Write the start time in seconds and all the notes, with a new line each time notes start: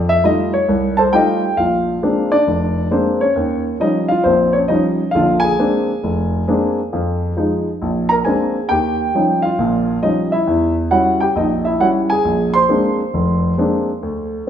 Already playing: F2
0.09 E5
0.24 G3 A3 D#4 F4 D#5
0.54 C#5
0.68 C2
0.97 A4 C5 A5
1.13 G3 A3 D#4 F4 G4 D#5 G5
1.57 A#1 F4 F5
2.02 G#3 A#3 C4 D4
2.32 D4 D5
2.47 F1
2.91 G#3 A#3 C4 D4 C5
3.21 C#4 C#5
3.36 D#2
3.80 F3 G3 C#4 D#4 D#5
4.08 F4 F5
4.24 A#1 C4 C5
4.53 C#4 C#5
4.68 F3 G3 C#4 D#4 D#5
5.11 A#1 D3 F5
5.16 F4
5.40 G#5
5.44 G#4
5.59 G#3 A#3 C4 D4
6.03 F1
6.48 G#3 A#3 C4 D4
6.93 F2 F3
7.37 F3 G#3 D#4
7.82 A#1
8.09 A#4 A#5
8.25 G#3 A#3 C4 D4 G#4 G#5
8.69 D#2 G4 G5
9.15 F3 G3 C#4 D#4
9.42 F4 F5
9.59 A#1 A#2
10.03 F3 G3 C#4 D#4 D#5
10.32 E4 E5
10.47 E2
10.91 G3 C#4 E4 F#4 F#5
11.20 G4 G5
11.36 A#1 D#4 D#5
11.65 E4 E5
11.80 G3 C#4 E4 F#4 F#5
12.10 G#4 G#5
12.25 A#1
12.54 C5 C6
12.69 G#3 A#3 C4 D4
13.14 F1
13.58 G#3 A#3 C4 D4
14.03 D2